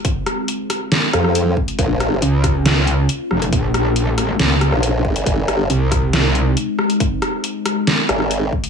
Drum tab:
HH |x-x-x-o-x-x-x--x|x-x-x-o-x-x-x--x|x-x-x-o-x-x-x--x|x-x-x-o-x-x-x--x|
SD |--r---r-o-rr----|--r---r-o-----r-|--r---r-o-rr----|--r---r-o-----r-|
BD |o-------------o-|o-----o---------|o-------------o-|o-----o---------|

HH |x-x-x-o-x-x-x--x|
SD |--r---r-o-rr----|
BD |o-------------o-|